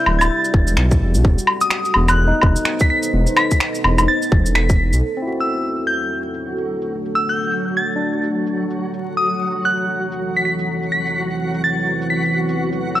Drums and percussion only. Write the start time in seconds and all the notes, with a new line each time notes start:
0.06 low woodblock
0.21 low woodblock, shaker
0.44 shaker
0.54 kick
0.67 shaker
0.77 finger snap
0.91 kick, shaker
1.14 shaker
1.25 kick
1.38 shaker
1.47 low woodblock
1.61 shaker
1.70 finger snap
1.85 shaker
1.94 low woodblock
2.08 low woodblock, shaker
2.41 kick, low woodblock
2.56 shaker
2.65 finger snap
2.79 kick, shaker
3.03 shaker
3.27 shaker
3.37 finger snap, low woodblock
3.51 kick, shaker
3.60 finger snap
3.75 shaker
3.84 low woodblock
3.98 low woodblock, shaker
4.22 shaker
4.32 kick
4.46 shaker
4.55 finger snap
4.69 kick, shaker
4.93 shaker
5.16 shaker
5.40 shaker
5.63 shaker
5.87 shaker
6.34 shaker
6.58 shaker
6.82 shaker
7.05 shaker
7.29 shaker
7.52 shaker
7.76 shaker
8.24 shaker
8.47 shaker
8.70 shaker
8.94 shaker
9.17 shaker
9.41 shaker
9.64 shaker
10.12 shaker
10.36 shaker
10.59 shaker
10.83 shaker
11.06 shaker
11.30 shaker
11.54 shaker
12.02 shaker
12.25 shaker
12.49 shaker
12.72 shaker
12.96 shaker